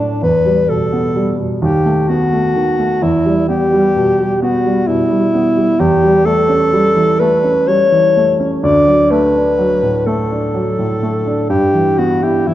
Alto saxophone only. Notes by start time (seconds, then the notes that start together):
Already playing: D4
0.23 B4
0.69 A4
1.62 G4
2.08 F#4
3.03 E4
3.48 G4
4.42 F#4
4.88 E4
5.80 G4
6.25 A4
7.19 B4
7.68 C#5
8.64 D5
9.11 B4
10.06 A4
11.50 G4
11.98 F#4
12.23 G4
12.47 E4